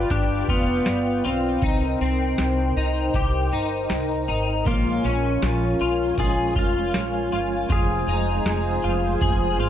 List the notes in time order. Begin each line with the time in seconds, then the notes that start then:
Already playing: F4 B4 D5 G5
0.10 G1 D4 G4, kick, closed hi-hat
0.48 F1 B3 F4, kick
0.86 G1, snare, closed hi-hat
1.25 B1 C4 F4
1.62 C2 D#4 A#4 C5 G5, kick, closed hi-hat
2.01 C2 C4
2.38 C2, snare, closed hi-hat
2.76 C2 D#4
3.14 C2 G4, kick, closed hi-hat
3.52 G1 D#4
3.89 C2, snare, closed hi-hat
4.28 G#1 D#4
4.65 A#1 A#2 F3 G#3 A#3 C#4 F4 C#5 G#5, kick, closed hi-hat
5.03 A#1 C#4 F4
5.07 G#3
5.42 A#1 F4, snare, closed hi-hat
5.80 A#1 F4
6.15 A#1 F3 G#3, kick, closed hi-hat
6.19 C#4 F4 G#4
6.24 F4
6.56 F1 F4, kick
6.94 A#1, snare, closed hi-hat
7.32 G1 F4
7.69 F1 F2 C3 F3 G#3 C4 F4 G#4 C5, kick, closed hi-hat
8.07 F1 F3 G#3 C4 D#4 F4
8.45 F1, snare, closed hi-hat
8.83 F1 F4
9.19 F1 F3 G#3 G#4, kick, closed hi-hat
9.25 C4 F4
9.59 G#1 F4